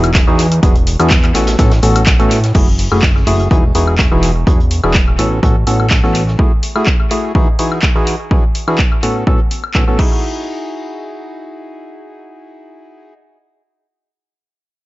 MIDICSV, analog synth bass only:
0, 0, Header, 1, 2, 480
1, 0, Start_track
1, 0, Key_signature, 4, "major"
1, 0, Tempo, 480000
1, 629, Time_signature, 4, 2, 24, 8
1, 14851, End_track
2, 0, Start_track
2, 0, Title_t, "Analog synth bass"
2, 0, Program_c, 0, 38
2, 0, Note_on_c, 0, 28, 97
2, 250, Note_off_c, 0, 28, 0
2, 275, Note_on_c, 0, 40, 105
2, 606, Note_off_c, 0, 40, 0
2, 629, Note_on_c, 0, 28, 98
2, 971, Note_off_c, 0, 28, 0
2, 995, Note_on_c, 0, 40, 97
2, 1326, Note_off_c, 0, 40, 0
2, 1347, Note_on_c, 0, 33, 98
2, 1566, Note_off_c, 0, 33, 0
2, 1588, Note_on_c, 0, 33, 106
2, 1806, Note_off_c, 0, 33, 0
2, 1828, Note_on_c, 0, 33, 96
2, 2170, Note_off_c, 0, 33, 0
2, 2196, Note_on_c, 0, 45, 102
2, 2527, Note_off_c, 0, 45, 0
2, 2549, Note_on_c, 0, 30, 97
2, 2891, Note_off_c, 0, 30, 0
2, 2916, Note_on_c, 0, 30, 94
2, 3246, Note_off_c, 0, 30, 0
2, 3269, Note_on_c, 0, 30, 97
2, 3486, Note_off_c, 0, 30, 0
2, 3509, Note_on_c, 0, 28, 100
2, 3727, Note_off_c, 0, 28, 0
2, 3749, Note_on_c, 0, 28, 93
2, 4091, Note_off_c, 0, 28, 0
2, 4116, Note_on_c, 0, 28, 101
2, 4446, Note_off_c, 0, 28, 0
2, 4469, Note_on_c, 0, 28, 94
2, 4811, Note_off_c, 0, 28, 0
2, 4836, Note_on_c, 0, 28, 93
2, 5166, Note_off_c, 0, 28, 0
2, 5188, Note_on_c, 0, 33, 93
2, 5406, Note_off_c, 0, 33, 0
2, 5430, Note_on_c, 0, 33, 102
2, 5647, Note_off_c, 0, 33, 0
2, 5669, Note_on_c, 0, 33, 94
2, 6011, Note_off_c, 0, 33, 0
2, 6037, Note_on_c, 0, 33, 102
2, 6367, Note_off_c, 0, 33, 0
2, 14851, End_track
0, 0, End_of_file